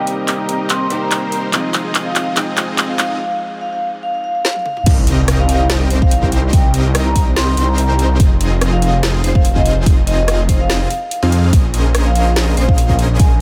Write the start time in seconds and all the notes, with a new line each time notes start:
Already playing: G3 A#3 C4 D#4 G4 A#4 D#5
0.07 closed hi-hat
0.28 clap, closed hi-hat
0.39 A#5
0.49 closed hi-hat
0.70 C6, clap, closed hi-hat
0.81 C6
0.88 G3 A#3 C4 D#4 G4 A#4 C5, closed hi-hat
0.93 G4
1.02 A#5
1.11 clap, closed hi-hat
1.32 closed hi-hat
1.51 F3 G#3 C4 D#4 F4 G#4 D#5, clap, closed hi-hat
1.55 G5
1.74 clap, closed hi-hat
1.95 clap, closed hi-hat
2.06 F5
2.16 F5, clap, closed hi-hat
2.34 F3 G#3 C4 D#4 F4 G#4 D#5, clap, closed hi-hat
2.39 G5
2.57 clap, closed hi-hat
2.78 clap, closed hi-hat
2.89 F5
2.99 F5, clap, closed hi-hat
3.20 F5
3.31 F5
3.61 F5
3.73 F5
4.03 F5
4.14 F5
4.24 F5
4.35 F5
4.45 F5, snare
4.56 F5, high tom
4.65 F5, mid tom
4.77 F5, mid tom
4.86 C2 C4 D#4 G4 A#4 D#5, kick, closed hi-hat, crash, impact
5.07 closed hi-hat
5.28 cross-stick, closed hi-hat
5.39 F5
5.49 F5, closed hi-hat
5.70 snare, closed hi-hat
5.90 C2 C4 D#4 G4 A#4 C5, closed hi-hat
6.02 F5, kick
6.11 F5, closed hi-hat
6.23 kick
6.32 closed hi-hat
6.53 C2 D#4 A#4 G5, kick, closed hi-hat
6.74 closed hi-hat
6.95 cross-stick, closed hi-hat
7.06 A#5
7.16 kick, closed hi-hat
7.36 C6, snare, closed hi-hat
7.48 C6
7.57 C2 C4 D#4 G4 A#4 C5, closed hi-hat
7.68 A#5
7.78 closed hi-hat
7.99 closed hi-hat
8.20 F1 C4 D#4 F4 G#4 D#5, kick, closed hi-hat
8.41 closed hi-hat
8.61 cross-stick, closed hi-hat
8.73 F5
8.82 F5, closed hi-hat
9.03 snare, closed hi-hat
9.24 F1 C4 D#4 F4 G#4 C5, closed hi-hat
9.35 F5, kick
9.45 F5, closed hi-hat
9.56 D#5, kick
9.66 closed hi-hat
9.86 F1 C4 D#4 F4 G#4 D#5, kick, closed hi-hat
10.07 D#5, closed hi-hat
10.19 D#5
10.28 cross-stick, closed hi-hat
10.49 C5, kick, closed hi-hat
10.60 F5
10.70 snare, closed hi-hat
10.90 closed hi-hat
11.11 closed hi-hat
11.23 F2 C4 D#4 F4 G#4 F5
11.32 closed hi-hat
11.53 A#1 C#4 G#4 A#4 D#5, kick, closed hi-hat
11.74 closed hi-hat
11.95 cross-stick, closed hi-hat
12.06 F5
12.15 F5, closed hi-hat
12.36 snare, closed hi-hat
12.57 A#1 C#4 G#4 A#4 C5 D#5, closed hi-hat
12.69 F5, kick
12.78 F5, closed hi-hat
12.89 kick
12.99 closed hi-hat
13.20 A#1 C#4 G#4 D#5 G#5, kick, closed hi-hat